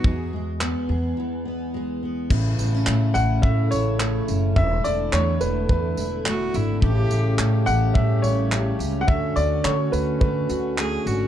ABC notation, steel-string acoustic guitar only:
X:1
M:4/4
L:1/16
Q:"Swing 16ths" 1/4=106
K:E
V:1 name="Steel-string acoustic guitar"
[E,,G]2 G,2 B,2 G2 E,2 B,2 G,2 B,2 | [K:A] [A,,E]2 B, C A,2 C2 A,2 E2 A,2 C2 | [E,,E]2 D2 A,2 D2 A,2 E2 A,2 D2 | [A,,E]2 C2 =G,2 C2 G,2 E2 G,2 C2 |
[D,F]2 C2 A,2 C2 A,2 F2 A,2 C2 |]